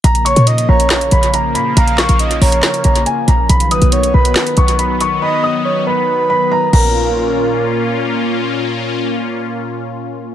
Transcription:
<<
  \new Staff \with { instrumentName = "Grand piano" } { \time 4/4 \key bes \phrygian \tempo 4 = 139 bes''8 des'''8 r8 bes''4 ces'''8 bes''8 ces'''8 | bes''8 des'''8 r8 bes''4 bes''8 aes''8 bes''8 | b''8 dis'''8 r8 b''4 des'''8 b''8 des'''8 | b''8 dis'''8 r8 b''4 b''8 bes''8 bes''8~ |
bes''2. r4 | r1 | }
  \new Staff \with { instrumentName = "Soft synth lead" } { \time 4/4 \key bes \phrygian r8 des''8 ees''8 des''4. r4 | f''4 ees''8 des''4. r4 | r8 b'8 des''8 b'4. r4 | dis''4 des''8 b'2 bes'8~ |
bes'2. r4 | r1 | }
  \new Staff \with { instrumentName = "Analog synth pad" } { \clef bass \time 4/4 \key bes \phrygian <des f bes>1~ | <des f bes>1 | <dis fis b>1~ | <dis fis b>2.~ <dis fis b>8 <bes, bes des' f'>8~ |
<bes, bes des' f'>1~ | <bes, bes des' f'>1 | }
  \new Staff \with { instrumentName = "808-style bass" } { \clef bass \time 4/4 \key bes \phrygian bes,,8. bes,8. bes,,4 bes,,4 bes,8 | bes,,8. bes,,8. bes,,8 r8 bes,,8 r8 bes,,8 | b,,8 bes,,16 b,,8. b,,8 r8 b,,4. | r2. r8 bes,,8~ |
bes,,1 | r1 | }
  \new DrumStaff \with { instrumentName = "Drums" } \drummode { \time 4/4 hh16 hh16 hh16 hh16 hh16 hh8 hh16 <hc hh sn>16 hh16 hh16 hh16 hh8 hh8 | hh16 hh16 <hc hh sn>16 hh16 hh16 hh16 hho16 hh16 <hc hh sn>16 hh16 hh16 hh16 hh8 hh8 | hh16 hh16 hh16 hh16 hh16 hh8 hh16 <hc hh sn>16 hh16 hh16 hh16 hh8 hh8 | r4 r4 r4 r8 cymc8 |
r4 r4 r4 r4 | r4 r4 r4 r4 | }
>>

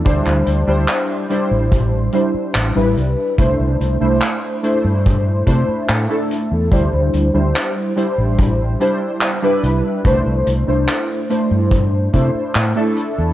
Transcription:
<<
  \new Staff \with { instrumentName = "Synth keys" } { \time 4/4 \key c \major \tempo 4 = 72 <g d' e' c''>8. <g d' e' c''>8. <g d' e' c''>4 <g d' e' c''>8. <g d' e' b'>8. | <a d' e' c''>8. <a d' e' c''>8. <a d' e' c''>4 <a d' e' c''>8. <a d' e' a'>8. | <g d' e' c''>8. <g d' e' c''>8. <g d' e' c''>4 <g d' e' c''>8. <g d' e' b'>8. | <a d' e' c''>8. <a d' e' c''>8. <a d' e' c''>4 <a d' e' c''>8. <a d' e' a'>8. | }
  \new Staff \with { instrumentName = "Fretless electric bass" } { \clef bass \time 4/4 \key c \major d,16 d,16 d,16 d,16 r8. a,,8. r8 a,,16 a,,16 c,16 r16 | c,16 c,16 c,16 c,16 r8. g,8. c16 r16 a,16 r8 e,16 | d,16 d,16 d,16 d,16 r8. a,,8. r4 c,16 r16 | c,16 c,16 c,16 c,16 r8. g,8. c16 r16 a,16 r8 e,16 | }
  \new DrumStaff \with { instrumentName = "Drums" } \drummode { \time 4/4 <hh bd>16 hc16 hh8 <hc hh>8 hh8 <hh bd>8 hh8 <hc hh>8 hh8 | <hh bd>8 hh8 <hc hh>8 hh8 <hh bd>8 <hh bd>8 <hc hh>8 hh8 | <hh bd>8 hh8 <hc hh>8 hh8 <hh bd>8 hh8 <hc hh>8 hh8 | <hh bd>8 hh8 <hc hh>8 hh8 <hh bd>8 <hh bd>8 <hc hh>8 hh8 | }
>>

